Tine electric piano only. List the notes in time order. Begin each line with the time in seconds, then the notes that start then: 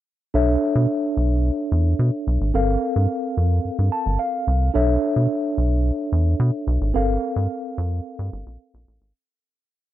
0.34 D4 A4 C#5 E5
2.54 C4 A4 A#4 F5
3.92 A5
4.19 F5
4.74 D4 A4 C#5 E5
6.94 C4 A4 A#4 F5